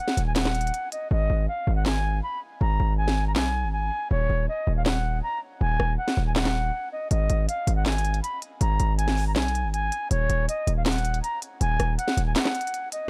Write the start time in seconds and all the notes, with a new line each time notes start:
0.00 F#5
0.08 snare
0.17 D#1, closed hi-hat
0.27 G#5
0.36 F#5, snare, clap, closed hi-hat
0.45 snare, clap
0.55 closed hi-hat
0.61 closed hi-hat
0.67 closed hi-hat
0.74 closed hi-hat
0.92 D#5, closed hi-hat
1.11 G#1 D#5
1.30 G#1
1.48 F5
1.67 G#1
1.76 F#5
1.86 G#5, snare, clap
2.23 B5
2.61 G#1 A#5
2.80 G#1
2.98 G#5
3.08 snare
3.27 A#5
3.36 B1 G#5, snare, clap
3.64 G#1
3.73 G#5
4.11 D#1 C#5
4.30 D#1
4.49 D#5
4.67 D#1
4.77 F5
4.86 F#5, snare, clap
5.23 A#5
5.61 D#1 G#5
5.80 D#1, cross-stick
5.98 F#5
6.08 snare
6.17 D#1
6.27 G#5
6.36 F#5, snare, clap
6.45 snare, clap
6.92 D#5
7.11 G#1 D#5, closed hi-hat
7.30 G#1, closed hi-hat
7.48 F5, closed hi-hat
7.67 G#1, closed hi-hat
7.76 F#5
7.86 G#5, snare, clap, closed hi-hat
7.92 closed hi-hat
7.98 closed hi-hat
8.05 closed hi-hat
8.14 closed hi-hat
8.23 B5, closed hi-hat
8.42 closed hi-hat
8.61 G#1 A#5, closed hi-hat
8.80 G#1, closed hi-hat
8.98 G#5, closed hi-hat
9.08 snare
9.17 open hi-hat
9.27 A#5
9.36 B1 G#5, snare, clap, closed hi-hat
9.42 closed hi-hat
9.48 closed hi-hat
9.55 closed hi-hat
9.64 G#1
9.73 G#5, closed hi-hat
9.92 closed hi-hat
10.11 D#1 C#5, closed hi-hat
10.30 D#1, closed hi-hat
10.49 D#5, closed hi-hat
10.67 D#1, closed hi-hat
10.77 F5
10.86 F#5, snare, clap, closed hi-hat
10.92 closed hi-hat
10.98 closed hi-hat
11.05 closed hi-hat
11.14 closed hi-hat
11.23 A#5, closed hi-hat
11.42 closed hi-hat
11.61 D#1 G#5, closed hi-hat
11.80 D#1, cross-stick, closed hi-hat
11.98 F#5, closed hi-hat
12.08 snare
12.17 D#1, closed hi-hat
12.27 G#5
12.36 F#5, snare, clap, closed hi-hat
12.45 snare, clap
12.55 closed hi-hat
12.61 closed hi-hat
12.67 closed hi-hat
12.74 closed hi-hat
12.92 D#5, closed hi-hat